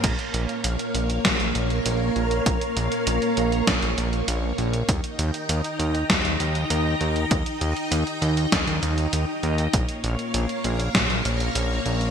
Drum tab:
CC |x---------------|----------------|----------------|----------------|
HH |xxxxxxxxxxxxx-xx|xxxxxxxxxxxxx-xx|xxxxxxxxxxxxx-xx|xxxxxxxxxxxxx-xx|
SD |--------o-------|--------o-------|--------o-------|--------o-------|
BD |o-------o-------|o-------o-------|o-------o-------|o-------o-------|

CC |----------------|
HH |xxxxxxxxxxxxx-xx|
SD |--------o-------|
BD |o-------o-------|